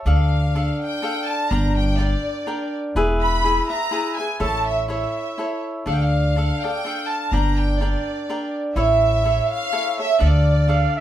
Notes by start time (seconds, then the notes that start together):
0.05 D2 D4 A4 D5 F5
0.55 D4 A4 D5 F5
0.82 G5
1.02 D4 A4 D5 F5
1.28 A5
1.50 G1 D4 A#4 D5 G5 A#5
1.77 G5
1.98 D4 A#4 D5 G5
2.47 D4 A#4 D5 G5
2.95 E1 E4 G#4 B4 E5
3.22 B5
3.44 E4 G#4 B4 E5
3.69 G#4 B4 E5 A#5
3.91 E4 G#4 B4 E5
4.18 G#4 B4 E5 G#5
4.40 A1 E4 A4 C#5 E5 A5
4.67 E5
4.88 E4 A4 C#5 E5
5.38 E4 A4 C#5 E5
5.86 D2 D4 A4 D5 F5
5.94 G5
6.03 F5
6.36 D4 A4 D5 F5
6.62 A4 D5 F5 G5
6.85 D4 A4 D5 F5
7.09 A5
7.32 G1 D4 A#4 D5 G5 A#5
7.57 G5
7.80 D4 A#4 D5 G5
8.30 D4 A#4 D5 G5
8.76 A1 E4 A4 C#5 E5
9.24 E4 A4 C#5 E5
9.51 F5
9.72 E4 A4 C#5 E5
9.98 A4 C#5 E5
10.19 D2 D4 A4 D5 F5
10.67 D4 A4 D5 F5
10.96 E5